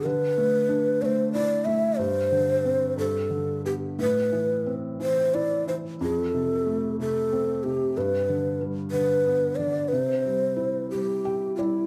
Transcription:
0.05 felt piano D3, shakuhachi B4
0.38 felt piano A3
0.69 felt piano D4
1.02 felt piano A3, shakuhachi C5 D5
1.33 felt piano E4, shakuhachi D5
1.65 felt piano A3, shakuhachi E5
1.98 felt piano G2, shakuhachi C5
2.32 felt piano D3
2.65 felt piano C4
2.97 felt piano G2, shakuhachi A4
3.30 felt piano D3
3.65 felt piano B3, shakuhachi G4
3.99 felt piano A2, shakuhachi B4
4.32 felt piano E3
4.66 felt piano C4
5.00 felt piano E3, shakuhachi C5
5.34 felt piano E4, shakuhachi D5
5.67 felt piano E3, shakuhachi C5
6.01 felt piano F2, shakuhachi G#4
6.18 shakuhachi A4
6.34 felt piano C3
6.66 felt piano A3
7.00 felt piano C3, shakuhachi A4
7.33 felt piano C4
7.63 felt piano C3, shakuhachi G4
7.97 felt piano G2, shakuhachi B4
8.29 felt piano D3
8.61 felt piano G3
8.91 felt piano D3, shakuhachi B4
9.26 felt piano B3
9.56 felt piano D3, shakuhachi D5
9.88 shakuhachi C5
9.93 felt piano C3
10.26 felt piano G3
10.57 felt piano E4
10.91 felt piano G3, shakuhachi G4
11.25 felt piano G4 G5
11.56 felt piano G3 D5, shakuhachi F4
11.60 shakuhachi E4

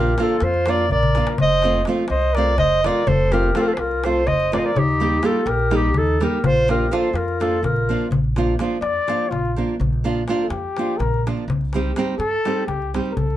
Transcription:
Already playing: upright bass A#1, nylon-string guitar F3 A#3 D4 F4, trumpet G4
0.00 clarinet A#4
0.07 darbuka tek
0.18 nylon-string guitar F3 A#3 D4 F4, trumpet F4, clarinet A4, darbuka tek
0.29 darbuka tek
0.40 upright bass F2, trumpet F4, clarinet C5, darbuka tek
0.54 darbuka tek
0.66 nylon-string guitar F3 A#3 D4 F4, trumpet A#4, darbuka tek
0.70 clarinet D5
0.78 darbuka tek
0.89 upright bass A#1, trumpet A#4, clarinet D5, darbuka dum
1.03 darbuka dum
1.15 nylon-string guitar F3 A#3 D4 F4, darbuka tek
1.27 darbuka tek
1.38 upright bass F1, trumpet C5, clarinet D#5, darbuka dum
1.51 darbuka tek
1.62 nylon-string guitar F3 A3 C4 F4, darbuka tek
1.74 darbuka tek
1.85 nylon-string guitar F3 A3 C4 F4, darbuka tek
2.08 upright bass C2, trumpet C5, clarinet D#5, darbuka tek
2.22 darbuka tek
2.34 nylon-string guitar F3 A3, trumpet A#4, clarinet D5, darbuka tek
2.38 nylon-string guitar C4 F4
2.58 upright bass F1, trumpet C5, clarinet D#5, darbuka tek, darbuka dum
2.72 darbuka tek
2.84 nylon-string guitar F3 A3 C4 F4, trumpet A#4, clarinet D5, darbuka tek
3.07 upright bass F1, trumpet A4, clarinet C5, darbuka dum
3.20 darbuka tek
3.32 nylon-string guitar F3 A3 C4 F4, trumpet G4, clarinet A#4, darbuka tek
3.43 darbuka tek
3.55 nylon-string guitar F3 A3 C4 F4, trumpet F4, clarinet A4, darbuka tek
3.61 trumpet G4, clarinet A#4
3.67 trumpet F4, clarinet A4
3.73 trumpet A4, clarinet C5
3.77 upright bass C2, trumpet F4, clarinet A#4, darbuka tek
3.91 darbuka tek
4.04 nylon-string guitar F3 A3 C4 F4, trumpet A4, clarinet C5, darbuka tek
4.27 upright bass F1, trumpet C5, clarinet D#5, darbuka tek, darbuka dum
4.40 darbuka tek
4.52 nylon-string guitar F3 A3 C4 F4, trumpet A#4, clarinet D5, darbuka tek
4.58 trumpet C5, clarinet D#5
4.64 trumpet A#4, clarinet D5
4.76 upright bass D#2, trumpet D#4, clarinet G4, darbuka dum
4.89 darbuka tek
5.00 nylon-string guitar G3 A#3 D#4 G4, darbuka tek
5.12 darbuka tek
5.22 nylon-string guitar G3 A#3 D#4 G4, trumpet F4, clarinet A4, darbuka tek
5.46 upright bass A#1, trumpet G4, clarinet A#4, darbuka tek
5.59 darbuka tek
5.71 nylon-string guitar G3 A#3 D#4 G4, trumpet D#4, darbuka tek
5.76 clarinet G4
5.94 upright bass D#2, trumpet D#4, clarinet A4, darbuka tek, darbuka dum
6.07 darbuka tek
6.20 nylon-string guitar G3 A#3 D#4 G4, trumpet G4, clarinet A#4, darbuka tek
6.44 upright bass A#1, trumpet F4, clarinet C5, darbuka dum
6.57 darbuka tek
6.68 nylon-string guitar F3 A#3 D4 F4, trumpet G4, clarinet A#4, darbuka tek
6.91 nylon-string guitar F3 A#3 D4 F4, trumpet A4, clarinet C5, darbuka tek
7.13 upright bass F2, trumpet F4, clarinet A#4, darbuka tek
7.28 darbuka tek
7.40 nylon-string guitar F3 A#3 D4 F4, trumpet F4, clarinet A4, darbuka tek
7.63 upright bass A#1, trumpet F4, clarinet A#4, darbuka tek, darbuka dum
7.76 darbuka tek
7.89 nylon-string guitar F3 A#3 D4 F4
8.01 darbuka tek
8.11 upright bass A#1, darbuka dum
8.24 darbuka tek
8.36 nylon-string guitar F3 A#3 D4 F4, darbuka tek
8.59 nylon-string guitar F3 A#3 D4 F4, darbuka tek
8.81 upright bass F2, trumpet D5, darbuka tek
9.08 nylon-string guitar F3 A#3 D4 F4, darbuka tek
9.30 upright bass A#1, trumpet F4, darbuka tek, darbuka dum
9.45 darbuka tek
9.56 nylon-string guitar F3 A#3 D4 F4
9.70 darbuka tek
9.80 upright bass A#1, darbuka dum
9.93 darbuka tek
10.04 nylon-string guitar F3 A#3 D4 F4, darbuka tek
10.28 nylon-string guitar F3 A#3 D4 F4, darbuka tek
10.42 trumpet A4
10.50 upright bass F2, trumpet G4, darbuka tek
10.77 nylon-string guitar F3 A#3 D4 F4, darbuka tek
10.98 upright bass A#1, trumpet A#4, darbuka tek, darbuka dum
11.14 darbuka tek
11.27 nylon-string guitar F3 A#3 D4 F4, darbuka tek
11.37 darbuka tek
11.48 upright bass C2, darbuka dum
11.61 darbuka tek
11.73 nylon-string guitar G3 C4 D#4 G4, darbuka tek
11.96 nylon-string guitar G3 C4 D#4 G4, darbuka tek
12.19 upright bass G2, trumpet A4, darbuka tek
12.45 nylon-string guitar G3 C4 D#4 G4, darbuka tek
12.67 upright bass C2, trumpet G4, darbuka tek, darbuka dum
12.82 darbuka tek
12.94 nylon-string guitar G3 C4 D#4 G4, darbuka tek
13.06 darbuka tek
13.11 trumpet A#4
13.17 upright bass C2, trumpet A4, darbuka dum
13.30 darbuka tek

